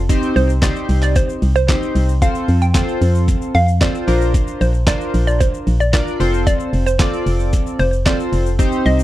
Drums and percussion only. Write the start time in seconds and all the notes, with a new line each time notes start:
0.09 kick, closed hi-hat, shaker
0.23 shaker
0.36 open hi-hat, shaker
0.49 shaker
0.62 kick, snare, clap, closed hi-hat, shaker
0.76 shaker
0.89 open hi-hat, shaker
1.02 clap, shaker
1.16 kick, closed hi-hat, shaker
1.29 shaker
1.42 open hi-hat, shaker
1.55 shaker
1.69 kick, snare, clap, closed hi-hat, shaker
1.82 shaker
1.96 open hi-hat, shaker
2.09 shaker
2.22 kick, closed hi-hat, shaker
2.35 shaker
2.48 open hi-hat, shaker
2.62 shaker
2.74 kick, snare, clap, closed hi-hat, shaker
2.88 shaker
3.02 open hi-hat, shaker
3.15 shaker
3.28 kick, closed hi-hat, shaker
3.42 shaker
3.55 open hi-hat, shaker
3.68 shaker
3.81 kick, snare, clap, closed hi-hat, shaker
3.95 shaker
4.08 open hi-hat, shaker
4.21 shaker
4.34 kick, closed hi-hat, shaker
4.47 shaker
4.61 open hi-hat, shaker
4.74 shaker
4.87 kick, snare, clap, closed hi-hat, shaker
5.01 shaker
5.14 open hi-hat, shaker
5.27 shaker
5.40 kick, closed hi-hat, shaker
5.54 shaker
5.67 open hi-hat, shaker
5.80 shaker
5.93 kick, snare, clap, closed hi-hat, shaker
6.07 shaker
6.20 open hi-hat, shaker
6.34 shaker
6.47 kick, closed hi-hat, shaker
6.60 shaker
6.73 open hi-hat, shaker
6.87 shaker
6.99 kick, snare, clap, closed hi-hat, shaker
7.13 shaker
7.27 open hi-hat, shaker
7.40 shaker
7.53 kick, closed hi-hat, shaker
7.67 shaker
7.79 open hi-hat, shaker
7.93 shaker
8.06 kick, snare, clap, closed hi-hat, shaker
8.20 shaker
8.33 open hi-hat, shaker
8.46 shaker
8.59 kick, closed hi-hat, shaker
8.72 shaker
8.86 open hi-hat, shaker
8.99 shaker